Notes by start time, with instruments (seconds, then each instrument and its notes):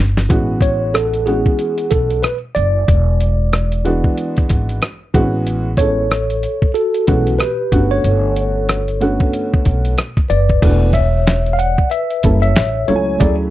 0.00 upright bass G1
0.17 snare
0.29 upright bass A1, upright piano E3 G#3 B3 C#4 F#4, kick, closed hi-hat
0.61 tine electric piano C#5, kick, closed hi-hat
0.94 tine electric piano A4, cross-stick, closed hi-hat
1.13 closed hi-hat
1.26 upright piano E3 G#3 B3 C#4 F#4, tine electric piano G#4, closed hi-hat
1.46 kick
1.59 closed hi-hat
1.78 closed hi-hat
1.91 upright bass B1, tine electric piano A4, kick, closed hi-hat
2.10 closed hi-hat
2.23 tine electric piano B4, cross-stick, closed hi-hat
2.55 upright bass F#1, tine electric piano D5, closed hi-hat
2.88 upright bass E1, kick, closed hi-hat
3.20 closed hi-hat
3.53 cross-stick, closed hi-hat
3.72 closed hi-hat
3.85 upright piano E3 G#3 B3 D4 F#4, closed hi-hat
4.04 kick
4.17 closed hi-hat
4.37 kick, closed hi-hat
4.49 upright bass G#1, kick, closed hi-hat
4.69 closed hi-hat
4.82 cross-stick, closed hi-hat
5.14 upright bass A1, upright piano E3 G#3 B3 C4 F#4, kick, closed hi-hat
5.22 upright piano C#4
5.47 closed hi-hat
5.77 upright piano E3 G#3 B3 C#4 A4, vibraphone A4, tine electric piano C#5, kick, closed hi-hat
6.11 cross-stick, closed hi-hat
6.30 closed hi-hat
6.43 closed hi-hat
6.62 kick
6.74 vibraphone F#4, tine electric piano A4, closed hi-hat
6.94 closed hi-hat
7.07 upright bass B1, upright piano E3 G#3 B3 C#4 F#4, kick, closed hi-hat
7.27 closed hi-hat
7.38 vibraphone G4, tine electric piano B4, cross-stick, closed hi-hat
7.72 upright bass G1, upright piano D3 A3 B3 C#4 F#4, kick, closed hi-hat
7.91 vibraphone A4, tine electric piano C#5
8.04 upright bass G1, closed hi-hat
8.36 closed hi-hat
8.69 cross-stick, closed hi-hat
8.88 closed hi-hat
9.00 upright piano D3 A3 B3 C#4 F#4, closed hi-hat
9.20 kick
9.33 closed hi-hat
9.54 kick
9.65 upright bass B1, kick, closed hi-hat
9.85 closed hi-hat
9.98 cross-stick, closed hi-hat
10.17 kick, cross-stick
10.28 upright bass F#1, vibraphone B4, tine electric piano D5, closed hi-hat
10.49 kick
10.62 upright bass E1, upright piano E3 A3 B3 D4 F#4, kick, closed hi-hat, crash
10.93 vibraphone C#5, tine electric piano E5, kick, closed hi-hat
11.27 snare, closed hi-hat
11.46 closed hi-hat
11.52 vibraphone C#5, tine electric piano F5
11.58 vibraphone D5, tine electric piano F#5, closed hi-hat
11.78 kick
11.90 vibraphone B4, tine electric piano E5, closed hi-hat
12.10 closed hi-hat
12.23 upright bass F#1, upright piano G3 A#3 C#4 E4 A4, kick, closed hi-hat
12.41 vibraphone C#5, tine electric piano E5, closed hi-hat
12.56 upright bass A1, snare, closed hi-hat
12.86 upright bass C#2, upright piano F#3 A3 C#4 E4 F4, vibraphone A4, tine electric piano C#5, closed hi-hat
12.96 upright piano G#5
13.19 upright bass D2, upright piano F#3 A3 C#4 E4 G#4, vibraphone A4, tine electric piano D5, kick, closed hi-hat